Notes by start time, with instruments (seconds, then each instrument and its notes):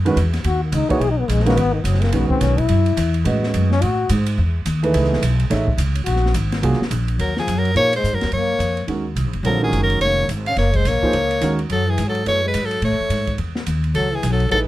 Already playing: upright bass F#2
0.05 grand piano D#3 G#3 C#4 F#4 B4, ride
0.16 upright bass E2, hi-hat pedal, ride
0.33 snare, ride
0.44 upright bass D#2, trombone F#4, ride
0.64 trombone A#3
0.72 upright bass C#2, trombone D#4, hi-hat pedal, ride
0.89 grand piano E3 A#3 D#4 G#4 C#5, trombone F#4, muted upright bass stroke, kick, ride
0.99 upright bass B1, trombone G#4, ride
1.10 trombone D#4
1.20 trombone B3
1.28 upright bass A#1, trombone G#3, hi-hat pedal, ride
1.40 snare
1.45 grand piano D#3 G#3 C#4 F#4 B4, trombone A#3, snare, ride
1.56 upright bass G#1, trombone B3, ride
1.73 trombone D#3
1.84 upright bass F#1, trombone F#3, hi-hat pedal, ride
1.94 snare
2.01 trombone A#3, snare, ride
2.12 upright bass A#1, grand piano D#3 G#3 C#4 F#4 B4, trombone B3, ride
2.29 trombone C4, kick
2.40 upright bass B1, trombone C#4, snare, hi-hat pedal, ride
2.58 trombone E4, kick, ride
2.69 upright bass F#2, ride
2.86 ride
2.97 upright bass E2, hi-hat pedal, ride
3.14 ride
3.24 upright bass A2, grand piano G#3 C#4 F#4 B4 D#5, ride
3.43 snare
3.54 upright bass F#2, hi-hat pedal, ride
3.71 trombone C#4, snare
3.82 upright bass A2, trombone F#4, ride
4.09 upright bass G#2, hi-hat pedal, ride
4.26 ride
4.38 upright bass E2
4.66 upright bass D#2, hi-hat pedal, ride
4.83 grand piano E3 A3 D#4 G#4 B4, ride
4.94 upright bass C#2, ride
5.04 snare
5.13 snare
5.22 upright bass B1, hi-hat pedal, ride
5.40 ride
5.50 upright bass A1, grand piano A3 D#4 G#4 C#5 E5, snare, ride
5.68 kick
5.77 upright bass C#2, hi-hat pedal, ride
5.94 trombone C#4, ride
6.04 upright bass A#1, trombone F#4, ride
6.16 snare
6.26 snare
6.34 upright bass G#1, hi-hat pedal, ride
6.52 snare, ride
6.62 upright bass C2, grand piano F#3 A#3 D4 F4 G#4, ride
6.73 snare
6.80 muted upright bass stroke, snare
6.91 upright bass A#1, hi-hat pedal, ride
7.08 ride
7.18 upright bass D#2, trombone F#3, soprano saxophone A#4, ride
7.37 trombone F3, soprano saxophone G#4, snare
7.47 upright bass F#2, hi-hat pedal, ride
7.56 trombone F#3, soprano saxophone A#4
7.65 ride
7.75 upright bass A#2, grand piano F3 A#3 D#4 G#4 C5, trombone A#3, soprano saxophone C#5, ride
7.93 trombone G#3, soprano saxophone C5, ride
8.03 upright bass G#2, hi-hat pedal
8.13 upright bass F#2, trombone F#3, soprano saxophone A#4
8.21 upright bass D#2, snare, ride
8.32 upright bass F#2, trombone A#3, soprano saxophone C#5, ride
8.59 upright bass F2, hi-hat pedal, ride
8.77 ride
8.87 upright bass D#2, grand piano D#3 G#3 C#4 F#4 A#4, ride
9.15 upright bass C2, hi-hat pedal, ride
9.25 upright bass A#1
9.33 upright bass F#1, ride
9.43 upright bass A#1, grand piano D3 G3 C4 F4 A4, trombone F#3, soprano saxophone A#4, ride
9.61 grand piano D#3 G#3 C#4 F#4 A#4, trombone F3, soprano saxophone G#4
9.71 upright bass F#1, hi-hat pedal, ride
9.81 trombone F#3, soprano saxophone A#4
9.90 ride
10.00 upright bass F1, trombone A#3, soprano saxophone C#5, ride
10.28 upright bass G#1, hi-hat pedal, ride
10.46 trombone C#4, soprano saxophone F5, ride
10.56 upright bass F#1, trombone A#3, soprano saxophone C#5, snare, ride
10.73 trombone G#3, soprano saxophone C5, kick, ride
10.85 upright bass A#1, trombone A#3, soprano saxophone C#5, hi-hat pedal, ride
11.03 grand piano F3 A#3 D#4 G#4 C5, kick
11.13 upright bass C#2, ride
11.31 ride
11.41 upright bass D#2, grand piano D#3 G#3 C#4 F#4 A#4, hi-hat pedal, ride
11.59 ride
11.70 upright bass F#2, trombone F#3, soprano saxophone A4, ride
11.88 trombone E3, soprano saxophone G#4
11.98 upright bass G#2, hi-hat pedal, ride
12.07 trombone F#3, soprano saxophone A4
12.15 ride
12.25 upright bass F#2, grand piano F#3 B3 E4 A4 C#5, trombone A3, soprano saxophone C#5, ride
12.45 trombone G#3, soprano saxophone B4
12.54 upright bass G#2, hi-hat pedal, ride
12.64 trombone F#3, soprano saxophone A4
12.71 ride
12.82 upright bass A2, trombone A3, soprano saxophone C#5, ride
12.92 upright bass F#2
13.00 upright bass E2
13.09 upright bass G#2, hi-hat pedal, ride
13.27 kick, ride
13.38 upright bass E2, ride
13.55 snare
13.66 upright bass D#2, hi-hat pedal, ride
13.84 ride
13.94 upright bass C#2, trombone F#3, soprano saxophone A4, ride
14.13 trombone E3, soprano saxophone G#4
14.23 upright bass B1, hi-hat pedal, ride
14.30 trombone F#3, soprano saxophone A4
14.40 ride
14.49 upright bass A1, grand piano E3 A3 D#4 G#4, trombone F#3, soprano saxophone A4, ride
14.53 grand piano B4